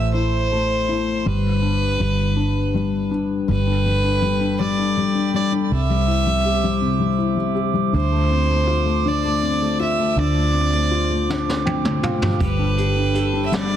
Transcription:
Already playing: A1 A3 E4 C5 E5
0.14 E4 C5
0.52 A3
0.89 E4
1.26 G1 G3 D4 B4
1.62 D4
2.00 G1 G3
2.36 D4
2.74 G3
3.11 D4
3.48 G1 G3 A4 B4 G5 B5
3.67 D4
3.85 G3
4.04 D4
4.22 G3
4.41 D4
4.60 G3 D5
4.78 D4
4.97 G3
5.15 D4
5.34 G3 D5
5.52 D4
5.71 C2 C3 C5 E5 D6
5.89 G3
6.08 E4
6.26 G3
6.45 G4
6.64 G3
6.81 C3
7.00 G3
7.18 E4
7.36 G3
7.55 G4
7.74 G3
7.92 D2 D3 F4
7.96 C5
8.12 A3
8.31 C4
8.49 A3
8.67 F4
8.86 A3
9.05 D3 D5
9.24 A3
9.43 C4
9.61 A3
9.80 F4 E5
9.99 A3
10.17 D2 D3 D5
10.35 A3
10.54 C4
10.74 A3
10.91 F4
11.10 A3
11.29 D3, snare
11.48 A3, snare
11.66 C4 G5, high tom
11.85 A3, mid tom
12.03 F4 F5, mid tom
12.22 A3, floor tom
12.40 G1 G3 A4 B4 G5 B5, kick, closed hi-hat
12.59 D4
12.78 D4 G4, closed hi-hat
12.96 D4
13.14 G4 A4, closed hi-hat
13.33 D4
13.46 E5
13.52 G3 B3 D5, snare, closed hi-hat
13.70 D4

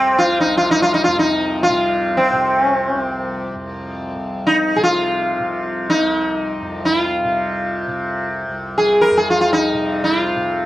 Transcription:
Already playing: C2 F2 C3 C4
0.19 F4
0.41 D#4
0.45 C2
0.57 F4
0.71 D#4
0.82 F4
0.94 D#4
1.04 F2 F4
1.19 D#4
1.63 F4
1.70 C3
2.17 C4
2.33 C3
2.63 C#4
2.75 C4
2.88 C#4
2.93 C2
3.00 C4
3.55 F2
4.16 F2
4.47 D#4
4.76 C3 G#4
4.83 F4
5.39 C3
5.90 D#4
6.00 C2
6.62 F2
6.85 E4
7.00 F4
7.24 C3
7.87 C3
8.49 C2
8.78 G#4
9.01 A#4
9.11 F2
9.17 G#4
9.30 F4
9.41 F4
9.53 D#4
9.74 C3
10.04 F4
10.36 C3

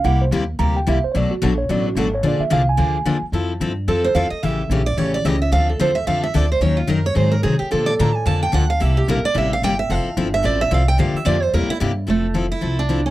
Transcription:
0.04 C2 C3 G3 A#3 E4 G4 F#5
0.21 C5
0.31 D#2 C3 G3 A#3 E4 G4
0.59 D2 C3 G3 A#3 E4 G4 A#5
0.77 G5
0.87 C2 C3 G3 A#3 E4 G4 E5
1.04 C5, muted upright bass stroke
1.12 B1 B2 F#3 A3 D4 C#5
1.16 F#4 D5
1.31 F#4, muted upright bass stroke
1.42 A#1 B2 F#3 A3 D4 F#4 A4
1.58 C#5
1.69 A1 B2 F#3 A3 D4 F#4 D5
1.87 F#4
1.95 G#1 B2 F#3 A3 D4 F#4
1.99 A4
2.14 C#5
2.23 A#1 D3 F3 A#3 D4 G#4 D5
2.39 E5, muted upright bass stroke
2.50 C2 D3 F3 A#3 D4 G#4 F5
2.69 G#5
2.77 D2 D3 F3 A#3 D4 G#4
3.05 E2 D3 F3 A#3 D4 G#4
3.22 muted upright bass stroke
3.32 F2 F3 C4 E4 A4
3.60 G2 F3 C4 E4 A4
3.88 F2 F3 C4 E4 A4
4.04 C5
4.15 E2 F3 C4 E4 A4 F5
4.30 D#5, muted upright bass stroke
4.43 A1 C#3 E3 A3 C#4 G4 E5
4.70 A#1 C#3 E3 A3 C#4 G4
4.86 D5
4.97 A1 C#3 E3 A3 C#4 G4 C#5
5.14 D5
5.25 C#2 C#3 E3 A3 C#4 G4 D#5
5.42 E5
5.52 D2 D3 F3 C4 D4 A4 F5
5.69 A4
5.79 E2 D3 F3 C4 D4 A4 C5
5.95 E5
6.07 F2 D3 F3 C4 D4 A4 F5
6.23 E5
6.34 D2 D3 F3 C4 D4 A4 D5
6.52 C5
6.61 D#2 D#3 F#3 C#4 D#4 A#4 C#5
6.77 F4
6.87 F#2 D#3 F#3 C#4 D#4 A#4
7.06 C#5
7.15 G#2 D#3 F#3 C4 D#4 G#4 C5
7.32 A#4
7.43 C3 D#3 F#3 C4 D#4 G#4
7.59 G4, muted upright bass stroke
7.71 A#2 D3 F3 A#3 D4 A4
7.86 D5
7.99 A2 D3 F3 A#3 D4 A4 A#5
8.15 G#5
8.26 F2 D3 F3 A#3 D4 A4 A5
8.43 G5
8.52 D2 D3 F3 A#3 D4 A4 F#5
8.70 F5
8.80 C2 C3 G3 A#3 E4 G4 E5
8.97 G4
9.08 A#1 C3 G3 A#3 E4 G4 A#4
9.24 D5, muted upright bass stroke
9.34 A1 C3 G3 A#3 E4 G4 E5
9.53 F5
9.62 G1 C3 G3 A#3 E4 G4 G5
9.79 E5
9.89 F1 F3 C4 E4 A4 F5
10.05 muted upright bass stroke
10.17 G1 F3 C4 E4 A4
10.34 E5
10.43 A1 F3 C4 E4 A4 D5
10.61 E5
10.71 C2 F3 C4 E4 A4 F5
10.88 G5
10.98 G2 D3 F3 A#3 D4 G4 F5
11.14 E5, muted upright bass stroke
11.25 F2 D3 F3 A#3 D4 G4 D5
11.42 C5
11.53 E2 C3 G3 A#3 E4 G4 A#4
11.68 E4, muted upright bass stroke
11.80 G2 C3 G3 A#3 E4 G4
12.07 F1 F3 A3 C4 E4 A4
12.34 F3 C4 E4 A4
12.52 E4
12.61 C2 F3 C4 E4 A4
12.79 D4
12.89 F3 C4 E4 A4
13.06 C#4

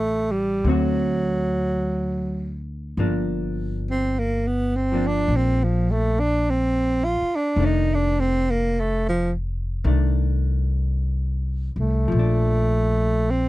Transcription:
Already playing: A1 G3 A3 C4
0.31 G3
0.64 D2 D3 A3 C4
0.68 F#3 F#4
2.97 G1 F3 A#3 D4
3.91 C4
4.19 A#3
4.47 B3
4.76 C4
4.92 F3 A#3 D4
5.07 D4
5.28 A#1
5.36 C4
5.64 F3
5.91 A3
6.20 D4
6.50 C4
7.04 F4
7.22 muted upright bass stroke
7.35 D4
7.56 F1 D#3 A3
7.62 D4 D#4
7.94 D4
8.20 C4
8.50 A#3
8.80 A3
9.09 F3
9.84 C2 D#3 A3 D4
11.76 C2
11.80 A3
12.08 A#1 F3
12.19 D4
13.30 C4

